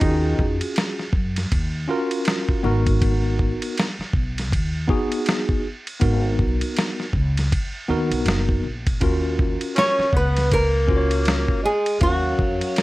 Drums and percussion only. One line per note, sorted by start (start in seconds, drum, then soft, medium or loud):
0.01 kick loud
0.01 ride medium
0.39 kick medium
0.61 ride medium
0.76 snare loud
0.76 hi-hat pedal soft
0.76 ride medium
0.99 snare soft
1.13 kick medium
1.36 snare soft
1.36 ride medium
1.52 kick medium
1.52 ride medium
2.11 ride medium
2.25 snare loud
2.25 hi-hat pedal soft
2.25 ride medium
2.49 kick medium
2.87 kick medium
2.87 ride medium
3.02 kick loud
3.02 ride medium
3.39 kick medium
3.62 ride medium
3.77 snare loud
3.77 hi-hat pedal soft
3.77 ride medium
4.01 snare soft
4.13 kick medium
4.38 snare soft
4.38 ride medium
4.52 kick medium
4.52 ride medium
4.89 kick medium
5.12 ride medium
5.26 snare loud
5.26 hi-hat pedal soft
5.26 ride medium
5.49 kick medium
5.87 ride medium
6.01 kick loud
6.01 ride medium
6.39 kick medium
6.61 ride medium
6.77 snare loud
6.77 hi-hat pedal soft
6.77 ride medium
7.00 snare soft
7.13 kick medium
7.37 snare soft
7.37 ride medium
7.52 kick medium
7.52 ride medium
8.12 ride medium
8.26 snare loud
8.26 hi-hat pedal soft
8.26 ride medium
8.49 kick medium
8.87 kick medium
8.87 ride medium
9.01 kick loud
9.01 ride medium
9.39 kick medium
9.61 ride medium
9.76 snare loud
9.76 hi-hat pedal soft
9.76 ride medium
10.00 snare soft
10.13 kick medium
10.37 snare soft
10.37 ride medium
10.52 kick medium
10.52 ride medium
10.89 kick medium
11.11 ride medium
11.25 snare loud
11.25 hi-hat pedal soft
11.25 ride medium
11.48 kick medium
11.86 ride medium
12.01 kick loud
12.01 ride medium
12.39 kick medium
12.61 ride medium
12.76 snare loud
12.76 hi-hat pedal soft
12.76 ride medium